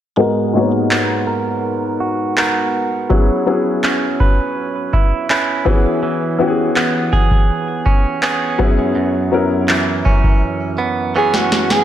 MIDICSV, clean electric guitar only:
0, 0, Header, 1, 2, 480
1, 0, Start_track
1, 0, Key_signature, 5, "minor"
1, 0, Tempo, 731707
1, 115, Time_signature, 4, 2, 24, 8
1, 7768, End_track
2, 0, Start_track
2, 0, Title_t, "Clean electric guitar"
2, 0, Program_c, 0, 27
2, 115, Note_on_c, 0, 56, 72
2, 595, Note_on_c, 0, 59, 56
2, 833, Note_on_c, 0, 70, 61
2, 1314, Note_on_c, 0, 66, 60
2, 1551, Note_off_c, 0, 59, 0
2, 1553, Note_on_c, 0, 59, 57
2, 1555, Note_off_c, 0, 66, 0
2, 1555, Note_off_c, 0, 70, 0
2, 1557, Note_on_c, 0, 66, 59
2, 1561, Note_on_c, 0, 70, 62
2, 2030, Note_off_c, 0, 56, 0
2, 2033, Note_on_c, 0, 54, 75
2, 2087, Note_off_c, 0, 70, 0
2, 2514, Note_off_c, 0, 59, 0
2, 2516, Note_on_c, 0, 61, 58
2, 2756, Note_on_c, 0, 71, 62
2, 3234, Note_off_c, 0, 66, 0
2, 3236, Note_on_c, 0, 64, 58
2, 3473, Note_off_c, 0, 61, 0
2, 3475, Note_on_c, 0, 61, 60
2, 3476, Note_off_c, 0, 64, 0
2, 3479, Note_on_c, 0, 64, 61
2, 3481, Note_off_c, 0, 71, 0
2, 3483, Note_on_c, 0, 71, 64
2, 3712, Note_off_c, 0, 54, 0
2, 3715, Note_on_c, 0, 52, 73
2, 3952, Note_off_c, 0, 52, 0
2, 3954, Note_on_c, 0, 52, 75
2, 4433, Note_off_c, 0, 61, 0
2, 4435, Note_on_c, 0, 59, 57
2, 4673, Note_off_c, 0, 71, 0
2, 4675, Note_on_c, 0, 68, 65
2, 5151, Note_off_c, 0, 64, 0
2, 5154, Note_on_c, 0, 61, 58
2, 5392, Note_off_c, 0, 59, 0
2, 5395, Note_off_c, 0, 68, 0
2, 5395, Note_on_c, 0, 59, 61
2, 5396, Note_off_c, 0, 61, 0
2, 5398, Note_on_c, 0, 61, 61
2, 5402, Note_on_c, 0, 68, 65
2, 5634, Note_on_c, 0, 42, 78
2, 5687, Note_off_c, 0, 68, 0
2, 5865, Note_off_c, 0, 42, 0
2, 5873, Note_on_c, 0, 42, 76
2, 5893, Note_off_c, 0, 52, 0
2, 6354, Note_on_c, 0, 52, 61
2, 6591, Note_off_c, 0, 61, 0
2, 6594, Note_on_c, 0, 61, 65
2, 6614, Note_off_c, 0, 59, 0
2, 7073, Note_on_c, 0, 59, 60
2, 7307, Note_off_c, 0, 52, 0
2, 7315, Note_off_c, 0, 61, 0
2, 7315, Note_on_c, 0, 52, 59
2, 7317, Note_off_c, 0, 59, 0
2, 7319, Note_on_c, 0, 59, 57
2, 7322, Note_on_c, 0, 61, 66
2, 7768, Note_off_c, 0, 42, 0
2, 7768, Note_off_c, 0, 52, 0
2, 7768, Note_off_c, 0, 59, 0
2, 7768, Note_off_c, 0, 61, 0
2, 7768, End_track
0, 0, End_of_file